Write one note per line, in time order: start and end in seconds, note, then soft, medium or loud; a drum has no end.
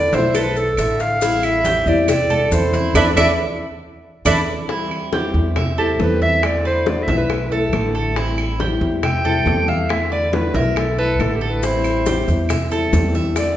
0.00 0.12 D3 medium
0.00 0.14 A3 medium
0.00 0.13 B3 medium
0.00 0.12 E4 medium
0.00 0.13 A4 medium
0.00 0.12 B4 medium
0.00 0.16 D5 loud
0.12 0.74 B1 medium
0.12 0.34 A3 medium
0.12 0.34 B3 medium
0.12 0.34 E4 medium
0.12 0.35 E4 medium
0.12 0.37 C5 loud
0.12 0.34 E5 medium
0.12 cowbell medium
0.12 high conga loud
0.12 maracas soft
0.35 0.55 D4 medium
0.35 0.77 A4 medium
0.35 0.59 B4 medium
0.35 muted steel-string acoustic guitar stroke medium
0.35 cowbell loud
0.35 high conga soft
0.35 claves medium
0.35 maracas medium
0.56 1.00 D4 medium
0.56 1.02 A4 loud
0.56 high conga soft
0.56 maracas soft
0.77 1.80 A1 medium
0.77 1.20 D3 soft
0.77 1.21 A3 soft
0.77 1.21 B3 medium
0.77 1.22 E4 medium
0.77 1.21 E5 medium
0.77 cowbell medium
0.77 high conga soft
0.77 claves medium
0.77 maracas medium
1.00 1.44 A4 medium
1.00 1.46 F5 loud
1.00 cowbell medium
1.00 high conga soft
1.00 maracas soft
1.21 2.08 E3 medium
1.21 1.86 G3 medium
1.21 1.86 C4 medium
1.21 1.64 E4 medium
1.21 1.86 E4 medium
1.21 cowbell loud
1.21 high conga soft
1.21 maracas medium
1.43 1.87 G4 medium
1.43 1.89 E5 loud
1.43 high conga soft
1.43 claves medium
1.43 maracas soft
1.65 2.07 G4 medium
1.65 cowbell medium
1.65 high conga loud
1.65 maracas medium
1.86 2.48 E2 loud
1.86 2.08 G3 medium
1.86 2.08 C4 medium
1.86 2.07 E4 medium
1.86 2.09 F4 medium
1.86 2.09 D5 medium
1.86 high conga soft
1.86 maracas soft
2.08 2.49 G4 medium
2.08 2.54 D5 loud
2.08 2.30 E5 medium
2.08 muted steel-string acoustic guitar stroke medium
2.08 cowbell loud
2.08 high conga soft
2.08 low conga medium
2.08 claves medium
2.08 maracas medium
2.30 2.72 A4 medium
2.30 high conga soft
2.30 low conga medium
2.30 maracas soft
2.51 2.92 E2 medium
2.51 2.94 E3 soft
2.51 2.94 G3 soft
2.51 2.95 C4 medium
2.51 2.94 E4 medium
2.51 2.96 C5 medium
2.51 cowbell medium
2.51 high conga medium
2.51 maracas medium
2.73 2.95 E4 medium
2.73 cowbell medium
2.73 high conga medium
2.73 maracas soft
2.94 3.11 E2 loud
2.94 3.09 B3 loud
2.94 3.09 D4 medium
2.94 3.09 D4 loud
2.94 3.09 E4 loud
2.94 3.09 A4 loud
2.94 3.09 B4 loud
2.94 3.09 D5 medium
2.94 3.09 E5 loud
2.94 3.07 E5 loud
2.94 cowbell loud
2.94 high conga loud
2.94 claves loud
2.94 maracas loud
3.16 3.33 E2 medium
3.16 3.31 B3 medium
3.16 3.31 D4 medium
3.16 3.31 E4 loud
3.16 3.31 E4 medium
3.16 3.31 A4 medium
3.16 3.31 B4 medium
3.16 3.31 D5 medium
3.16 3.31 E5 medium
3.16 3.27 E5 loud
3.16 cowbell loud
3.16 high conga loud
3.16 claves loud
3.16 maracas loud
4.25 4.42 E2 loud
4.25 4.40 B3 medium
4.25 4.39 D4 loud
4.25 4.40 D4 medium
4.25 4.39 E4 loud
4.25 4.40 E4 medium
4.25 4.39 A4 loud
4.25 4.40 B4 medium
4.25 4.40 D5 medium
4.25 4.40 E5 medium
4.25 4.37 E5 medium
4.25 cowbell loud
4.25 high conga loud
4.25 claves loud
4.25 maracas loud
4.68 5.11 E3 medium
4.68 5.12 G3 medium
4.68 5.12 C4 medium
4.68 5.11 E4 medium
4.68 5.12 E4 medium
4.68 high bongo medium
4.68 high conga soft
4.91 high bongo soft
4.91 high conga soft
4.91 claves medium
5.12 5.33 E3 medium
5.12 5.34 G3 medium
5.12 5.34 C4 medium
5.12 5.32 E4 medium
5.12 5.55 G4 medium
5.12 high bongo medium
5.12 high conga loud
5.34 5.95 E2 loud
5.34 5.55 G3 soft
5.34 5.55 C4 soft
5.34 5.55 E4 soft
5.34 high bongo soft
5.34 high conga soft
5.56 5.77 E5 medium
5.56 muted steel-string acoustic guitar stroke medium
5.56 high bongo medium
5.56 high conga soft
5.56 low conga medium
5.56 claves medium
5.78 5.99 G3 soft
5.78 5.99 C4 medium
5.78 5.98 E4 medium
5.78 6.03 G4 medium
5.78 6.20 A4 medium
5.78 high bongo soft
5.78 high conga soft
5.99 7.02 E2 loud
5.99 6.42 E3 medium
5.99 6.42 G3 medium
5.99 6.42 C4 medium
5.99 6.43 E4 medium
5.99 6.22 B4 medium
5.99 high bongo soft
5.99 low bongo medium
5.99 high conga medium
6.21 6.64 E5 medium
6.21 6.47 E5 loud
6.21 high conga medium
6.42 6.85 D3 medium
6.42 6.85 A3 medium
6.42 6.86 B3 medium
6.42 6.86 E4 medium
6.42 6.66 D5 medium
6.42 high bongo medium
6.42 high conga soft
6.42 claves medium
6.65 7.07 B4 medium
6.65 6.90 C5 medium
6.65 high bongo soft
6.65 high conga soft
6.86 7.07 D3 medium
6.86 7.07 A3 medium
6.86 7.08 B3 medium
6.86 7.06 E4 medium
6.86 7.04 D5 medium
6.86 high bongo medium
6.86 high conga medium
7.03 7.16 E5 medium
7.07 7.69 B1 loud
7.07 7.28 A3 soft
7.07 7.29 B3 soft
7.07 7.28 E4 medium
7.07 7.50 E5 medium
7.07 high bongo soft
7.07 high conga loud
7.17 7.77 B4 medium
7.29 muted steel-string acoustic guitar stroke medium
7.29 high bongo medium
7.29 high conga soft
7.29 claves medium
7.50 7.72 A3 soft
7.50 7.72 B3 medium
7.50 7.72 E4 medium
7.50 7.94 A4 medium
7.50 high bongo soft
7.50 high conga soft
7.72 8.75 A1 loud
7.72 8.15 D3 medium
7.72 8.15 A3 medium
7.72 8.16 B3 medium
7.72 8.16 E4 medium
7.72 high bongo soft
7.72 low bongo medium
7.72 claves medium
7.95 8.16 A4 medium
7.95 high conga soft
8.15 8.57 E3 medium
8.15 8.58 G3 medium
8.15 8.59 C4 medium
8.15 8.59 E4 medium
8.15 high bongo medium
8.15 high conga soft
8.38 high bongo soft
8.38 high conga soft
8.38 claves medium
8.58 8.80 E3 medium
8.58 8.80 G3 medium
8.58 8.80 C4 medium
8.58 8.79 E4 medium
8.58 9.02 G4 medium
8.58 high bongo medium
8.58 high conga medium
8.80 9.42 E2 loud
8.80 9.01 G3 soft
8.80 9.02 C4 soft
8.80 9.02 E4 medium
8.80 high bongo soft
8.80 high conga soft
9.02 9.24 E5 medium
9.02 9.70 G5 loud
9.02 muted steel-string acoustic guitar stroke medium
9.02 high bongo medium
9.02 high conga soft
9.02 low conga medium
9.02 claves medium
9.24 9.45 G3 soft
9.24 9.46 C4 medium
9.24 9.45 E4 medium
9.24 9.67 A4 medium
9.24 high bongo soft
9.24 high conga soft
9.24 low conga medium
9.46 10.48 E2 loud
9.46 9.88 E3 medium
9.46 9.89 G3 medium
9.46 9.89 C4 medium
9.46 9.90 E4 medium
9.46 high bongo soft
9.46 low bongo medium
9.46 high conga medium
9.68 10.10 E5 medium
9.68 9.93 F5 medium
9.68 high conga medium
9.89 10.31 D3 medium
9.89 10.32 A3 medium
9.89 10.33 B3 medium
9.89 10.33 E4 medium
9.89 10.12 E5 medium
9.89 high bongo medium
9.89 high conga soft
9.89 claves medium
10.11 10.54 B4 medium
10.11 10.36 D5 loud
10.11 high bongo soft
10.11 high conga soft
10.32 10.54 D3 medium
10.32 10.54 A3 medium
10.32 10.54 B3 medium
10.32 10.53 E4 medium
10.32 10.56 B4 medium
10.32 high bongo medium
10.32 high conga loud
10.54 11.15 B1 loud
10.54 10.76 A3 soft
10.54 10.76 B3 soft
10.54 10.75 E4 medium
10.54 10.79 A#4 loud
10.54 10.97 E5 medium
10.54 high bongo soft
10.54 high conga medium
10.76 10.98 A4 medium
10.76 muted steel-string acoustic guitar stroke medium
10.76 high bongo medium
10.76 high conga soft
10.76 claves medium
10.98 11.19 A3 soft
10.98 11.19 B3 medium
10.98 11.19 E4 medium
10.98 11.40 A4 medium
10.98 11.22 B4 loud
10.98 high bongo soft
10.98 high conga soft
11.19 12.21 A1 loud
11.19 11.62 D3 medium
11.19 11.62 A3 medium
11.19 11.63 B3 medium
11.19 11.63 E4 medium
11.19 11.37 A4 medium
11.19 high bongo soft
11.19 low bongo medium
11.19 high conga soft
11.19 claves medium
11.35 11.51 G4 medium
11.41 11.62 A4 medium
11.41 high conga soft
11.50 11.67 B4 medium
11.62 12.04 E3 medium
11.62 12.05 G3 medium
11.62 12.06 C4 medium
11.62 12.05 E4 medium
11.62 12.06 E4 medium
11.62 12.51 C5 medium
11.62 high bongo medium
11.62 high conga soft
11.62 maracas medium
11.84 high bongo soft
11.84 high conga soft
11.84 claves medium
11.84 maracas soft
12.05 12.27 E3 medium
12.05 12.27 G3 medium
12.05 12.27 C4 medium
12.05 12.26 E4 medium
12.05 12.48 G4 medium
12.05 high bongo medium
12.05 high conga medium
12.05 maracas medium
12.27 12.89 E2 loud
12.27 12.48 G3 soft
12.27 12.49 C4 soft
12.27 12.48 E4 medium
12.27 high bongo soft
12.27 high conga soft
12.27 maracas soft
12.49 12.71 E5 medium
12.49 muted steel-string acoustic guitar stroke medium
12.49 high bongo medium
12.49 high conga soft
12.49 low conga medium
12.49 claves medium
12.49 maracas medium
12.70 12.92 G3 soft
12.70 12.92 C4 soft
12.70 12.91 E4 medium
12.70 13.13 A4 medium
12.70 high bongo soft
12.70 high conga soft
12.70 maracas soft
12.92 13.57 E2 medium
12.92 13.35 E3 medium
12.92 13.35 G3 medium
12.92 13.36 C4 medium
12.92 13.36 E4 medium
12.92 high bongo soft
12.92 low bongo medium
12.92 high conga medium
12.92 maracas medium
13.15 13.57 E5 medium
13.15 high conga medium
13.15 maracas soft
13.35 13.57 D3 medium
13.35 13.57 A3 medium
13.35 13.57 B3 medium
13.35 13.57 E4 medium
13.35 13.57 D5 medium
13.35 high bongo medium
13.35 high conga soft
13.35 claves medium
13.35 maracas medium